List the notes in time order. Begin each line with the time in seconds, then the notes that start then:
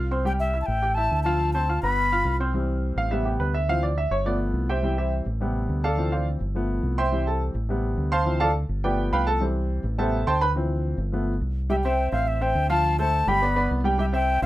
Already playing: C2
0.11 C4 C5 C6
0.25 G3 G4 G5
0.40 E5
0.54 E4 E5 E6
0.61 A5
0.66 A1 G5
0.82 G4 G5 G6
0.95 E4 E5 A5 E6
1.11 D2
1.23 F3 F4 F5 A5
1.53 C4 C5 A5 C6
1.69 F4 F5 F6
1.82 G1 B3 B4 B5
2.12 F4 F5 F6
2.25 C2
2.40 C4 C5 C6
2.54 E3 G3 C4
2.96 A1 F5
3.11 C3 G3 B3 E5
3.25 G4
3.40 D2 B4
3.54 E5
3.69 E3 F3 C4 F5
3.83 D5
3.98 E5
4.11 G1 C#5
4.25 F3 A3 B3 D5
4.54 C2
4.69 G4 C5 E5 G5
4.83 E3 G3 C4
4.98 E4 G4 C5 E5
5.26 A1
5.41 C3 G3 B3
5.69 D2
5.84 A4 D5 F5 A5
5.97 E3 F3 C4
6.12 F4 C5 D5 F5
6.40 G1
6.55 F3 A3 B3
6.83 C2
6.98 C5 E5 G5 C6
7.12 E3 G3 C4
7.27 A4 A5
7.55 A1
7.69 C3 G3 B3
7.97 D2
8.12 C5 F5 A5 C6
8.25 E3 F3 C4
8.40 A4 D5 F5 A5
8.69 G1
8.84 F3 A3 B3 G4 B4 D5 G5
9.12 C2 B4 F5 G5 B5
9.27 A4 A5
9.40 E3 G3 C4
9.84 A1
9.98 C3 G3 B3 A4 C5 E5 A5
10.27 D2 C5 G5 A5 C6
10.41 B4 B5
10.56 E3 F3 C4
10.98 G1
11.12 F3 A3 B3
11.41 C2
11.70 G3 G4 E5 G5
11.84 C4 C5 E5 G5
12.12 A1 C4 C5 E5 F5
12.28 E5
12.41 C4 C5 E5 G5
12.55 D2
12.70 F3 F4 F5 A5
12.99 A3 A4 C5 A5
13.27 G1 G3 G4 G5 B5
13.42 B3 B4 D5
13.56 B3 B4 D5
13.71 C2
13.84 G3 G4 G5
13.98 G3 G4 E5 G5
14.13 C4 C5 E5 G5
14.42 A1 C4 C5 E5